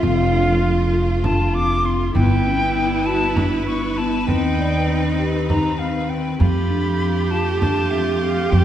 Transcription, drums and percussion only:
0.03 frame drum medium
1.24 frame drum medium
1.54 frame drum soft
2.15 frame drum medium
3.36 frame drum medium
3.67 frame drum soft
4.28 frame drum medium
5.50 frame drum medium
6.40 frame drum medium
7.62 frame drum medium
8.52 frame drum soft

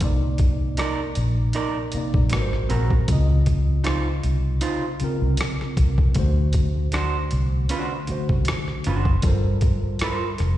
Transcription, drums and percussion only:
0.00 kick loud
0.00 closed hi-hat medium
0.38 kick medium
0.38 closed hi-hat medium
0.77 cross-stick medium
0.77 closed hi-hat medium
1.15 closed hi-hat medium
1.53 closed hi-hat medium
1.92 closed hi-hat medium
2.14 kick medium
2.30 cross-stick loud
2.30 closed hi-hat medium
2.53 cross-stick soft
2.70 closed hi-hat medium
2.90 kick medium
3.08 kick loud
3.08 closed hi-hat medium
3.46 kick medium
3.46 closed hi-hat medium
3.84 cross-stick medium
3.84 closed hi-hat medium
4.23 closed hi-hat medium
4.61 closed hi-hat medium
5.00 closed hi-hat medium
5.37 cross-stick loud
5.37 closed hi-hat medium
5.61 cross-stick soft
5.77 kick medium
5.77 closed hi-hat medium
5.98 kick medium
6.14 kick loud
6.14 closed hi-hat medium
6.53 kick medium
6.53 closed hi-hat medium
6.92 cross-stick medium
6.92 closed hi-hat medium
7.31 closed hi-hat medium
7.69 closed hi-hat medium
8.07 closed hi-hat soft
8.29 kick medium
8.45 cross-stick loud
8.45 closed hi-hat medium
8.68 cross-stick soft
8.84 closed hi-hat medium
9.05 kick medium
9.22 kick loud
9.22 closed hi-hat medium
9.61 kick medium
9.61 closed hi-hat medium
9.99 cross-stick medium
9.99 closed hi-hat medium
10.38 cross-stick soft
10.38 closed hi-hat medium

